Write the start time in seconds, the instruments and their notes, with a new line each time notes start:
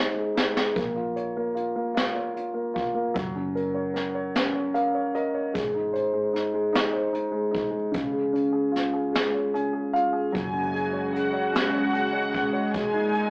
Already playing: fingered electric bass G#1, grand piano G#3 D#4 C5
0.14 grand piano G#3
0.35 grand piano D#4, snare
0.54 grand piano G#3, snare
0.76 fingered electric bass A#1, grand piano A#3, kick, closed hi-hat
0.96 grand piano F4
1.16 grand piano C#5, closed hi-hat
1.37 grand piano A#3
1.55 grand piano F4, closed hi-hat
1.76 grand piano A#3
1.95 grand piano F4, snare, closed hi-hat
2.15 grand piano C#5
2.34 grand piano F4, closed hi-hat
2.54 grand piano A#3
2.74 grand piano F4, kick, closed hi-hat
2.95 grand piano A#3
3.14 fingered electric bass F#1, grand piano F#3, kick, closed hi-hat
3.35 grand piano C#4
3.55 grand piano A#4, closed hi-hat
3.74 grand piano C#5
3.94 grand piano A#4, snare, closed hi-hat
4.15 grand piano C#5
4.35 grand piano C#4, snare, closed hi-hat
4.54 grand piano C#5
4.74 grand piano A#4 F5, closed hi-hat
4.95 grand piano C#5
5.15 grand piano A#4 D#5, closed hi-hat
5.34 grand piano C#5
5.54 fingered electric bass G#1, grand piano G#3, kick, closed hi-hat
5.74 grand piano D#4
5.93 grand piano C5, closed hi-hat
6.13 grand piano G#3
6.33 grand piano D#4, snare, closed hi-hat
6.54 grand piano G#3
6.73 grand piano D#4, snare, closed hi-hat
6.93 grand piano C5
7.13 grand piano D#4, closed hi-hat
7.32 grand piano G#3
7.51 grand piano D#4, kick, closed hi-hat
7.71 grand piano G#3
7.92 fingered electric bass C#2, grand piano C#3, kick, closed hi-hat
8.12 grand piano G#3
8.33 grand piano C#4, closed hi-hat
8.53 grand piano G#4
8.72 grand piano F4
8.76 snare, closed hi-hat
8.93 grand piano G#4
9.13 grand piano G#3, snare, closed hi-hat
9.34 grand piano C#5
9.54 grand piano C#4 G#5, closed hi-hat
9.73 grand piano G#4
9.93 grand piano F4 F5, closed hi-hat
10.13 grand piano G#4
10.32 fingered electric bass F#1, analog synth pad C#3 G#3 F#4, grand piano F#3, violin section G#5, kick, closed hi-hat
10.53 grand piano C#4
10.73 grand piano G#4, closed hi-hat
10.93 grand piano C#5
11.13 grand piano G#4, violin section F#5, closed hi-hat
11.33 grand piano C#5
11.53 grand piano C#4, violin section F#5, snare, closed hi-hat
11.73 grand piano C#5
11.93 grand piano G#4, closed hi-hat
12.13 grand piano C#5
12.32 grand piano G#4, kick, closed hi-hat
12.53 grand piano C#5
12.73 analog synth pad A#2 D#4, grand piano G#3, violin section G#5, kick, closed hi-hat
12.93 grand piano D#4
13.14 grand piano G#4, closed hi-hat